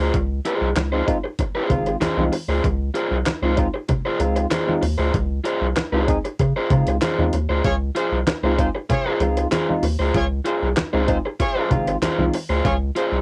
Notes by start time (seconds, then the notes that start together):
0.00 D2 F4 G#4 C5
0.14 C#2, kick, closed hi-hat, muted conga
0.45 F4 G#4 C5, closed hi-hat
0.61 C2
0.76 C#2, muted overdriven electric guitar stroke, snare, clap, closed hi-hat, high conga
0.92 G#3 C4 D#4 F4 G#4 C5
1.06 G#3 C4 D#4 F4, muted overdriven electric guitar stroke, kick, closed hi-hat
1.24 muted overdriven electric guitar stroke
1.39 muted overdriven electric guitar stroke, kick, closed hi-hat, muted conga
1.55 F4 G#4 C5
1.69 G#1 G#3 C4 D#4 F4, muted overdriven electric guitar stroke, kick, closed hi-hat, muted conga, low conga
1.86 muted overdriven electric guitar stroke, closed hi-hat
2.01 C2 F4 G#4 C5, snare, clap, closed hi-hat, high conga
2.17 C2 G#3 C4 D#4 F4, high conga
2.32 muted overdriven electric guitar stroke, open hi-hat
2.48 D2 D#4 F4 G#4 C5
2.64 C#2, kick, closed hi-hat, muted conga
2.94 F4 G#4 C5, closed hi-hat
3.11 C2
3.26 muted overdriven electric guitar stroke, snare, clap, closed hi-hat, high conga
3.42 C#2 G#3 C4 D#4 F4 G#4 C5
3.57 G#3 C4 D#4 F4, muted overdriven electric guitar stroke, kick, closed hi-hat
3.74 F4, muted overdriven electric guitar stroke
3.89 muted overdriven electric guitar stroke, kick, closed hi-hat, low conga
4.06 F4 G#4 C5
4.19 C#2 G#3 C4 D#4 F4, muted overdriven electric guitar stroke, closed hi-hat, muted conga
4.36 muted overdriven electric guitar stroke, closed hi-hat
4.51 F4 G#4 C5, snare, clap, closed hi-hat, high conga
4.67 G#3 C4 D#4 F4, high conga
4.82 D#2, muted overdriven electric guitar stroke, open hi-hat
4.98 D2 D#4 F4 G#4 C5
5.14 C#2, kick, closed hi-hat, muted conga
5.44 F4 G#4 C5, closed hi-hat
5.62 C2
5.76 muted overdriven electric guitar stroke, snare, clap, closed hi-hat, high conga
5.92 C#2 G#3 C4 D#4 F4 G#4 C5
6.07 G#3 C4 D#4 G#4, muted overdriven electric guitar stroke, kick, closed hi-hat
6.25 F4, muted overdriven electric guitar stroke, closed hi-hat
6.39 C#3, muted overdriven electric guitar stroke, kick, closed hi-hat
6.56 F4 G#4 C5
6.70 C#3 G#3 C4 D#4 F4, muted overdriven electric guitar stroke, kick, closed hi-hat, muted conga, low conga
6.87 C#2, muted overdriven electric guitar stroke, closed hi-hat
7.02 F4 G#4 C5, snare, clap, closed hi-hat, high conga
7.18 E2 G#3 C4 D#4 F4, high conga
7.33 D#2, muted overdriven electric guitar stroke, closed hi-hat
7.49 D2 D#4 F4 G#4 C5
7.64 C#2 F4 G#4 C#5, kick, closed hi-hat, muted conga
7.95 F4 G#4 C5, closed hi-hat
8.12 C2
8.27 muted overdriven electric guitar stroke, snare, clap, closed hi-hat, high conga
8.43 C#2 G#3 C4 D#4 F4 G#4 C5
8.58 G#3 C4 D#4 F4 G#4 C5, muted overdriven electric guitar stroke, kick, closed hi-hat
8.75 F4, muted overdriven electric guitar stroke
8.89 F4 G#4 C#5, muted overdriven electric guitar stroke, kick, closed hi-hat, muted conga, low conga
9.06 F4 G#4 C5
9.20 C#2 G#3 C4 D#4 F4, muted overdriven electric guitar stroke, closed hi-hat, muted conga
9.37 muted overdriven electric guitar stroke, closed hi-hat
9.51 F4 G#4 C5, snare, clap, closed hi-hat, high conga
9.68 G#3 C4 D#4 F4, high conga
9.83 D#2, muted overdriven electric guitar stroke, open hi-hat
9.99 D2 D#4 F4 G#4 C5
10.14 C#2 F4 G#4 C#5, kick, closed hi-hat, muted conga
10.45 F4 G#4 C5, closed hi-hat
10.62 C2
10.77 muted overdriven electric guitar stroke, snare, clap, closed hi-hat, high conga
10.93 C#2 G#3 C4 D#4 F4 G#4 C5
11.07 G#3 C4 D#4 F4 G#4 C5, muted overdriven electric guitar stroke, kick, closed hi-hat
11.25 muted overdriven electric guitar stroke
11.40 F4 G#4 C#5, muted overdriven electric guitar stroke, kick, closed hi-hat
11.56 F4 G#4 C5
11.69 G#1 G#3 C4 D#4 F4, muted overdriven electric guitar stroke, kick, closed hi-hat, muted conga, low conga
11.87 muted overdriven electric guitar stroke, closed hi-hat
12.01 C2 F4 G#4 C5, snare, clap, closed hi-hat, high conga
12.18 C2 G#3 C4 D#4 F4, high conga
12.34 muted overdriven electric guitar stroke, open hi-hat
12.49 D2 D#4 F4 G#4 C5
12.64 C#2 F4 G#4 C#5, kick, closed hi-hat, muted conga
12.96 F4 G#4 C5, closed hi-hat
13.12 C2